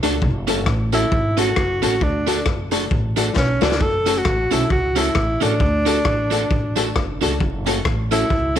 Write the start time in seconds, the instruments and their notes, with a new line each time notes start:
0.03 upright bass C#2, honky-tonk piano A3 D4 F#4 A4, clean electric guitar D4 F#4 A4, closed hi-hat, tambourine
0.22 upright bass F#1, kick
0.47 honky-tonk piano A3 C#4 F#4 A4, clean electric guitar C#4 F#4 A4, closed hi-hat, tambourine
0.66 upright bass A1, kick, cross-stick
0.92 honky-tonk piano A3 C#4 F#4 A4, clean electric guitar C#4 F#4 A4, tenor saxophone E4, closed hi-hat, tambourine
1.12 upright bass G#1, kick
1.37 honky-tonk piano A3 C#4 F#4 A4, clean electric guitar C#4 F#4 A4, tenor saxophone F#4, closed hi-hat, tambourine
1.56 upright bass F#1, muted clean electric guitar stroke, kick, cross-stick
1.82 upright bass A1, honky-tonk piano A3 C#4 F#4 A4, clean electric guitar C#4 F#4 A4, tenor saxophone F#4, closed hi-hat, tambourine
2.01 upright bass D2, tenor saxophone D4, kick
2.27 honky-tonk piano A3 D4 F#4 A4, clean electric guitar D4 F#4 A4, closed hi-hat, tambourine
2.46 upright bass F#1, kick, cross-stick
2.71 honky-tonk piano A3 D4 F#4 A4, clean electric guitar D4 F#4 A4, closed hi-hat, tambourine
2.91 upright bass A1, kick
3.16 honky-tonk piano A3 D4 F#4 A4, clean electric guitar D4 F#4 A4, closed hi-hat, tambourine
3.36 upright bass B1, tenor saxophone C#4, kick, snare
3.61 upright bass C#2, honky-tonk piano A3 D4 F#4 A4, clean electric guitar D4 F#4 A4, tenor saxophone D4, snare, tambourine
3.71 snare
3.81 upright bass F#1, tenor saxophone A4, kick
4.06 honky-tonk piano A3 C#4 F#4 A4, clean electric guitar C#4 F#4 A4, closed hi-hat, tambourine
4.18 tenor saxophone F#4
4.25 upright bass A1, kick, cross-stick
4.51 upright bass B1, honky-tonk piano A3 C#4 F#4 A4, clean electric guitar C#4 F#4 A4, tenor saxophone E4, closed hi-hat, tambourine
4.70 upright bass C#2, tenor saxophone F#4, kick
4.96 honky-tonk piano A3 C#4 F#4 A4, clean electric guitar C#4 F#4 A4, tenor saxophone E4, closed hi-hat, tambourine
5.15 upright bass A1, muted clean electric guitar stroke, kick, cross-stick
5.41 upright bass A1, honky-tonk piano A3 C#4 F#4 A4, clean electric guitar C#4 F#4 A4, tenor saxophone D4, closed hi-hat, tambourine
5.60 upright bass D2, kick
5.86 honky-tonk piano A3 D4 F#4 A4, clean electric guitar D4 F#4 A4, closed hi-hat, tambourine
6.05 upright bass A1, kick, cross-stick
6.31 honky-tonk piano A3 D4 F#4 A4, clean electric guitar D4 F#4 A4, closed hi-hat, tambourine
6.51 upright bass A1, kick
6.76 honky-tonk piano A3 D4 F#4 A4, clean electric guitar D4 F#4 A4, closed hi-hat, tambourine
6.96 upright bass F#1, kick, cross-stick
7.21 upright bass C#2, honky-tonk piano A3 D4 F#4 A4, clean electric guitar D4 F#4 A4, closed hi-hat, tambourine
7.40 upright bass F#1, kick
7.66 honky-tonk piano A3 C#4 F#4 A4, clean electric guitar C#4 F#4 A4, closed hi-hat, tambourine
7.85 upright bass A1, kick, cross-stick
8.11 honky-tonk piano A3 C#4 F#4 A4, clean electric guitar C#4 F#4 A4, tenor saxophone E4, closed hi-hat, tambourine
8.30 upright bass C#2, kick
8.56 honky-tonk piano A3, clean electric guitar C#4, closed hi-hat, tambourine